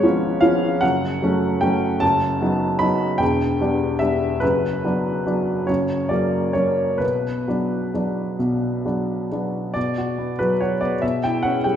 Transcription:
Already playing: G#1 G#2 C#5
0.03 F3 B3 C#4
0.41 F3 B3 C#4 F5
0.81 F#1 F#2 F#5
1.22 F#3 A3 C#4
1.61 F#3 A3 C#4 G5
2.00 F#1 F#2 A5
2.42 F#3 B3 D#4
2.79 F#3 B3 D#4 B5
3.18 E1 E2 G5
3.61 G3 B3 D4
3.99 G3 B3 D4 E5
4.40 F#1 F#2 B4
4.84 F#3 B3 D4
5.27 F#3 B3 D4
5.67 F#1 F#2 C#5
6.09 F#3 A#3 C#4 D5
6.53 F#3 A#3 C#4 C#5
6.98 B1 B2 B4
7.48 F#3 B3 D4
7.94 F#3 B3 D4
8.39 B1 B2
8.85 F#3 B3 D4
9.32 F#3 B3 D4
9.74 B2 D5
9.98 F#4
10.18 B3
10.39 F#3 B4
10.60 F#4 C#5
10.81 B3 D5
11.02 B2 E5
11.23 E4 G5
11.43 C#4 F#5
11.64 G3 G5

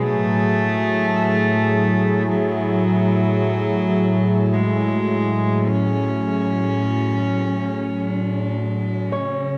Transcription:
Already playing: F#3 G#4 B4
0.02 A3
0.07 A2
0.52 E4
2.29 F#3
4.53 G#3
5.67 C#4
9.12 C#3 C#4 C#5

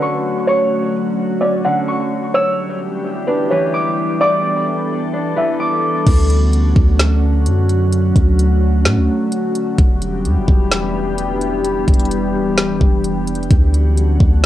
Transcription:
Already playing: D3 F#3 A3 C#4 F#4
0.02 C#6
0.47 C#5 C#6
1.41 C#4 D5
1.65 D3 F#5
1.88 C#6
2.34 E3 G3 B3 D4 G4 C#5 E6
3.27 D4 B4
3.50 E3 C#5
3.74 D6
4.20 A4 D5 D6
5.13 D4
5.36 E3 E5
5.60 D6
6.06 D2 D3 F#3 A3 C#4 F#4, kick, closed hi-hat, crash
6.30 closed hi-hat
6.53 closed hi-hat
6.76 D2, kick
6.99 snare, closed hi-hat
7.46 F#2, closed hi-hat
7.69 closed hi-hat
7.92 closed hi-hat
8.16 D2, kick, closed hi-hat
8.39 closed hi-hat
8.85 A2, snare, closed hi-hat
8.97 D2
9.32 closed hi-hat
9.55 closed hi-hat
9.78 E1 E3 G3 B3 D4 G4, kick, closed hi-hat
10.02 closed hi-hat
10.25 E2, closed hi-hat
10.37 E1
10.48 E1, kick
10.72 snare, closed hi-hat
11.18 closed hi-hat
11.41 closed hi-hat
11.65 closed hi-hat
11.88 E1, kick, closed hi-hat
11.94 closed hi-hat
12.00 closed hi-hat
12.05 closed hi-hat
12.11 closed hi-hat
12.34 D1
12.58 snare, closed hi-hat
12.81 E1, kick
13.04 closed hi-hat
13.27 closed hi-hat
13.35 closed hi-hat
13.43 closed hi-hat
13.51 D2 D3 F#3 A3 C#4 F#4, kick, closed hi-hat
13.74 closed hi-hat
13.97 closed hi-hat
14.20 D2, kick

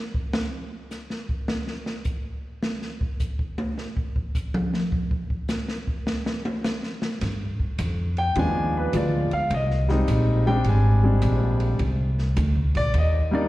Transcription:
0.14 kick
0.33 snare
0.91 snare, hi-hat pedal
1.10 snare
1.29 kick
1.48 snare
1.67 snare
1.86 snare
2.04 kick, hi-hat pedal
2.63 snare
2.82 snare
3.01 kick
3.20 kick, hi-hat pedal
3.39 kick
3.58 high tom
3.78 snare
3.97 kick
4.16 kick
4.35 kick, hi-hat pedal
4.54 mid tom
4.74 snare
4.92 kick
5.11 kick
5.30 kick
5.48 snare, hi-hat pedal
5.68 snare
5.87 kick
6.07 snare
6.26 snare
6.45 high tom
6.64 snare, hi-hat pedal
6.83 snare
7.02 snare
7.21 G2, kick, snare, ride
7.59 muted upright bass stroke, kick
7.78 F2, hi-hat pedal, ride
8.17 G5, ride
8.35 D#2 F3 G#3 B3 D4 G#5, kick, ride
8.77 B4
8.93 D2 F3 G#3 B3 F4 D5, kick, hi-hat pedal, ride
9.31 F5, muted upright bass stroke, ride
9.50 C2 D#5, kick, ride
9.70 snare
9.88 G3 G#3 C4 D#4, snare
10.08 A#1, kick, hi-hat pedal, ride
10.46 G3 G#3 C4 D4 G5
10.64 G#1, kick, ride
10.69 G#5
11.03 G3 G#3 C4 D4
11.22 A#1, kick, hi-hat pedal, ride
11.60 ride
11.79 C2, kick, ride
12.18 snare
12.37 D2, kick, hi-hat pedal, ride
12.55 C2
12.75 A#1 D5, ride
12.94 D#2, kick, ride
12.98 D#5
13.31 G3 A#3 D4 D#4 D5

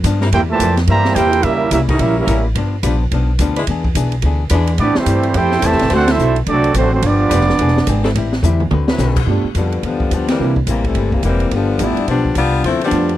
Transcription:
0.04 G2 F3 B3 D4, kick, hi-hat pedal, ride
0.21 G3 C4 E4 A#4, snare
0.32 E2 C3 G3 A#3 E4 G4 A#4 C5 G5, kick, ride
0.49 A#2 E3 A3 G4 C5 E5 A5
0.59 F2 C3 G3 A#3 E4, kick, hi-hat pedal, ride
0.77 snare, ride
0.87 G2 C3 E3 G3 A#3 E4 G4 C5 E5 A#5, kick, ride
1.05 snare
1.13 E2 C3 G3 A#3 C4 E4 G4 A#4 C5 G5, kick, hi-hat pedal, ride
1.18 G3 A#3 E4
1.33 ride
1.43 C#2 C#3 G3 A#3 C#4 E4 G4 A#4 E5, kick, ride
1.71 C2 C#3 G3 A#3 C#4 E4 G4 A#4 E5, kick, hi-hat pedal, ride
1.89 G3 C4 C#4 D#4 E4 F#4 A4 A#4 D#5, kick, ride
1.98 A#1 C#3 G3 A#3 C#4 E4 G4 A#4 E5, kick, ride
2.16 G3 A#3 C#4 E4 G4 A#4 E5
2.26 A1 C#3 G3 A#3 C#4 E4 A#4, kick, hi-hat pedal, ride
2.30 E4
2.55 G1 G2 F3 B3 D4, kick, ride
2.83 A#1 G2 F3 G3 B3 D4 F4 B4, kick, hi-hat pedal, ride
3.11 B1 G2 F3 B3 D4, kick, ride
3.39 D2 G2 F3 B3 D4, kick, hi-hat pedal, ride
3.56 G#3 D4 E4 B4, ride
3.67 E2 E3 B3 D4 G#4, kick, ride
3.84 kick
3.95 B1 E3 B3 D4 G#4, kick, hi-hat pedal, ride
4.12 ride
4.22 D2 E3 B3 D4, kick, ride
4.26 G#4
4.50 E2 E3 G#3 B3 D4 E4 B4, kick, hi-hat pedal, ride
4.54 D4 G#4
4.67 ride
4.78 A2 G3 B3 C4 D4 E4 G4 D5, kick, ride
4.82 E4
4.95 E3 G3 A3 C4 E4 G4 C5, muted upright bass stroke, snare
5.06 G2 A2 G3 C4 E4, kick, hi-hat pedal, ride
5.23 ride
5.34 F2 A2 G3 C4 E4 G4 A4 C5 G5, kick, ride
5.51 snare
5.62 E2 A2 C3 E3 G3 A3 C4 E4 G4 C5 E5 A5, kick, hi-hat pedal, ride
5.72 C2, snare
5.79 A1, snare, ride
5.90 D2 D3 A3 C4 D4 F#4 A4 C5, kick, snare, ride
5.94 C4 D4 F#4 F#5
6.08 A3 C4 D4 E4 A4 C5 E5, snare, ride
6.18 B1 D3 A3 C4 F#4, hi-hat pedal
6.36 ride
6.46 C2 D3 F#3 A3 C4 D4 F#4 A4 D5, kick, ride
6.64 ride
6.74 A1 D3 F#3 A3 C4 D4 F#4 C5, kick, hi-hat pedal, ride
6.91 F#3 A3 C4 D4 F#4 C5
7.02 G1 G2 F3 B3 D4 F4 G4 D5, kick, ride
7.07 D4
7.30 F1 G2 F3 G3 B3 D4 F4 B4, kick, hi-hat pedal, ride
7.41 snare
7.49 snare
7.59 E1 E3 C4 D4 G#4, kick, ride
7.68 snare
7.77 snare
7.87 G#1 E3 C4 D4 G#4, kick, hi-hat pedal, ride
8.03 G3 C4 E4 A4, snare
8.15 A1 A2 G3 C4 E4, kick, ride
8.33 snare
8.43 E2 A2 G3 C4 E4, hi-hat pedal, mid tom
8.60 mid tom
8.71 D2 D3 C4 F#4 B4, mid tom
8.88 F#3 C4 E4 B4, snare
8.98 B1 D3 C4 F#4 B4, snare, hi-hat pedal
9.16 kick, crash
9.27 G2 F3 A3 B3 D4 F4 G4, kick
9.44 muted upright bass stroke
9.55 F2 G2 B2 D3 F3 G3 B3 D4, kick, hi-hat pedal, ride
9.72 ride
9.83 E2 G2 D3 F3 G3 B3 D4, kick, ride
10.00 kick
10.11 D2 G2 F3 G3 B3 D4, kick, hi-hat pedal, ride
10.28 E3 G3 A#3 C4, snare, ride
10.39 C2 C3 G3 A#3 C4 D4 E4
10.56 kick
10.67 A1 C3 E3 G3 A#3 E4, kick, hi-hat pedal, ride
10.84 C3 E3 G3 A3, kick, ride
10.95 G1 C3 G3 A#3 E4, kick, ride
11.12 C3 E3 G3 A#3, kick
11.23 E1 C3 E3 G3 A#3 C4 E4, hi-hat pedal, ride
11.40 ride
11.51 G1 G2 D3 F3 G3 B3 D4, kick, ride
11.79 A1 G2 F3 G3 A3 B3 D4 E4 F4, kick, hi-hat pedal, ride
11.83 B3
11.97 muted upright bass stroke, ride
12.07 B1 G2 F3 G3 B3 D4, kick, ride
12.12 D4
12.25 kick
12.35 C2 G2 F3 G3 B3 D4 F4, kick, hi-hat pedal, ride
12.64 D2 G2 F3 A3 B3 C4 E4, kick, ride
12.68 D4
12.81 F3 G3 B3 D4, ride
12.91 F2 G2 F3 G3 A3 B3 D4 F4, kick, hi-hat pedal, ride
12.96 D4
13.09 ride

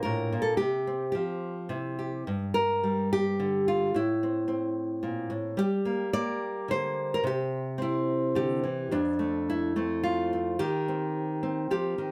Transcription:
Already playing: A#2 A#3 D4
0.03 A2 A#4
0.32 A#2
0.42 A4
0.57 C3 G4
0.87 C4
1.12 F3 G4
1.69 C3 E4
1.99 G4
2.27 G2
2.54 A#4
2.84 G3
3.13 G4
3.40 D3
3.68 F4
3.94 A2 E4
4.23 C4
4.48 C4
5.03 A#2
5.30 A2
5.57 G3 G4
5.85 A#3
6.13 A#3 D5
6.68 D3 C5
7.14 A#4
7.24 C3 G4
7.78 C4 E4
8.35 D3 G4
8.64 E3
8.91 F2 D4
9.19 A3
9.50 E4
9.76 A3 C4
10.03 F4
10.33 C4
10.59 D#3 G4
10.88 C4
11.43 C4
11.71 F3 G4
11.98 D#3

